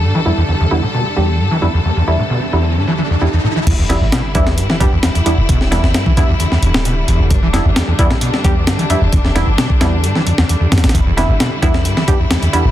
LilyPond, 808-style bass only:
\new Staff \with { instrumentName = "808-style bass" } { \clef bass \time 4/4 \key e \minor \tempo 4 = 132 r1 | r1 | e,,8. g,,16 r2 r8. e,,16 | e,,8. g,,16 r4. d,,4 e,,16 e,,16 |
e,,8. g,,16 r2 r8. e,,16 | e,,8. g,,16 r2 r8 e,16 a,,16 | e,,8. g,,16 r2 r8. e,,16 | }